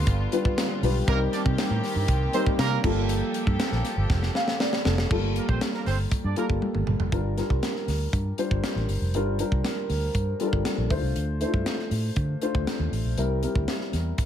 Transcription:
Already playing: D3 G3 B3 D4 F4 B4
0.07 G1, kick, closed hi-hat
0.32 G3 D4 F4 B4, closed hi-hat
0.45 kick
0.58 snare, closed hi-hat
0.83 B1 G3 D4 F4 B4, open hi-hat
1.07 C2 D#3 G3 A#3 C4 D#4 G4 A#4, kick, closed hi-hat
1.33 D4 D5, snare, closed hi-hat
1.46 C3, kick
1.58 snare, closed hi-hat
1.70 A2
1.84 snare, open hi-hat
1.96 G2
2.08 C2, kick, closed hi-hat
2.33 G3 C4 D#4 A#4 C5, closed hi-hat
2.46 kick
2.59 C3 A#3 A#4, snare, closed hi-hat
2.84 G1 F3 G3 A#3 F4 G4 A4, kick, crash
3.09 closed hi-hat
3.34 closed hi-hat
3.47 G2, kick
3.60 snare, closed hi-hat
3.72 A#1, snare
3.85 snare, closed hi-hat
3.97 G1
4.10 F1, kick, snare
4.23 snare
4.35 F5, snare
4.48 snare
4.60 D5, snare
4.73 snare
4.85 F1 A4, snare
4.98 snare
5.11 G1 G3 A3 F4 A4, kick, crash
5.17 A#3
5.36 A#3 A#4, closed hi-hat
5.49 A#1 C4 C5, kick
5.61 snare, closed hi-hat
5.74 A#3 A#4, snare
5.86 G1 C4 C5, snare, open hi-hat
6.11 muted fingered electric bass stroke, kick, closed hi-hat
6.24 G2 D4 D5
6.36 G3 A#3 F4 A4 A#4, closed hi-hat
6.50 G1, kick
6.62 high tom
6.75 G1, mid tom
6.87 G1, mid tom
7.00 F1, floor tom
7.12 G1 G3 D4 F4 A#4, kick, closed hi-hat
7.36 G3 D4 F4 A#4, snare, closed hi-hat
7.50 C2, kick
7.63 snare, closed hi-hat
7.76 snare
7.88 D2, snare, open hi-hat
8.13 G2, kick, closed hi-hat
8.38 G3 D4 F4 C5, closed hi-hat
8.51 G1, kick
8.64 snare, closed hi-hat
8.76 A1, snare
8.89 G1, open hi-hat
9.01 F1
9.14 G1 G3 D4 F4 A#4, closed hi-hat
9.39 G3 D4 F4 A#4, closed hi-hat
9.52 C2, kick
9.64 snare, closed hi-hat
9.90 D2, open hi-hat
10.15 G2, kick, closed hi-hat
10.40 G3 D4 F4 A4, closed hi-hat
10.47 A#4
10.53 G1, kick
10.65 snare, closed hi-hat
10.78 A#1
10.90 D2 A3 D4 E4 C5, kick, open hi-hat
10.97 F4
11.03 C2
11.16 D2, closed hi-hat
11.40 A3 D4 E4 C5, closed hi-hat
11.48 F4
11.54 G2, kick
11.66 snare, closed hi-hat
11.79 snare
11.91 A2, open hi-hat
12.16 D3, kick, closed hi-hat
12.41 A3 D4 F4 C5, closed hi-hat
12.55 D2, kick
12.67 snare, closed hi-hat
12.79 D#2
12.92 A1, open hi-hat
13.05 A#1
13.17 C2 G3 C4 E4 A#4, closed hi-hat
13.43 G3 C4 E4 A#4, closed hi-hat
13.55 D2, kick
13.68 snare, closed hi-hat
13.81 snare
13.93 E2, snare, closed hi-hat
14.18 kick, closed hi-hat

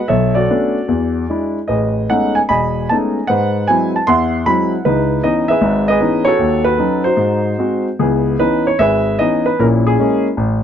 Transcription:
0.08 B1 A4 C#5 E5
0.35 F#4 A4 D5
0.50 A3 B3 C#4 D4
0.88 E2
1.30 G#3 D4 E4
1.68 A1 G#4 B4 D#5
2.10 G#3 A3 B3 C#4 D#4 F#5
2.35 G#5
2.49 E1 D#5 G#5 B5
2.89 G#3 A3 B3 C#4 D#4 A5
3.27 G#2 B4 C5 F#5
3.67 F#3 G#3 C4 E4 G#5
3.96 A5
4.07 E2 E5 F#5 C6
4.46 F#3 G#3 C4 E4 B5
4.85 C#2 D#4 E4 B4
5.23 E3 B3 C#4 D#4 D#5
5.48 G#4 B4 E5
5.61 G#1 G#2
5.88 G#4 B4 D#5
6.00 E3 B3 C#4 D#4
6.25 F#4 A4 C#5
6.39 D#2
6.64 F#4 B4
6.78 F#3 C#4 D#4
7.04 D#4 F#4 C5
7.17 G#2
7.58 G#3 C4 F#4
7.99 C#2 B3 E4 G#4
8.39 E3 B3 C#4 D#4 B4
8.67 C#5
8.79 G#1 G#4 B4 E5
9.19 E3 B3 C#4 D#4 D#5
9.46 B4
9.59 A#1 A#2 C#4 E4 A#4
9.87 C#4 E4 G#4
10.00 G#3 A#3 C#4
10.37 A1

